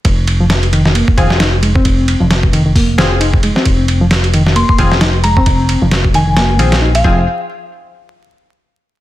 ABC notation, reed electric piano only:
X:1
M:4/4
L:1/16
Q:"Swing 16ths" 1/4=133
K:Fm
V:1 name="Reed electric piano" clef=bass
z3 F, z2 E, E, B,2 E, z E z A, C- | C3 F, z2 E, E, B,2 E, z E z A, C- | C3 F, z2 E, E, B,2 E, z E z A, C- | C3 F, z2 E, E, B,2 E, z E z F,2 |
z16 |]